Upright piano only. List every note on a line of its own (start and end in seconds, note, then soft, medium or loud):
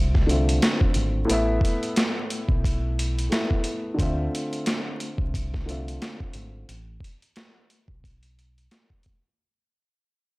0.00 0.22 D3 medium
0.00 0.23 A3 medium
0.00 0.24 C4 medium
0.00 0.25 F4 medium
0.00 0.27 E5 medium
0.27 1.28 D3 medium
0.27 1.25 A3 soft
0.27 1.29 C4 soft
0.27 1.30 F4 soft
0.31 1.30 E5 medium
1.25 3.25 A2 medium
1.25 3.26 A3 medium
1.29 3.27 B3 medium
1.29 3.28 E4 medium
1.33 3.29 E5 medium
3.29 3.98 A2 soft
3.29 3.95 A3 soft
3.29 3.99 B3 soft
3.29 3.99 E4 soft
3.34 4.00 E5 medium
3.94 5.62 D3 medium
3.94 5.63 A3 medium
3.98 5.64 C4 medium
3.98 5.65 F4 medium
4.03 5.66 E5 medium
5.66 6.68 D3 soft
5.66 6.68 A3 soft
5.66 6.69 C4 soft
5.66 6.69 F4 soft
5.70 6.70 E5 medium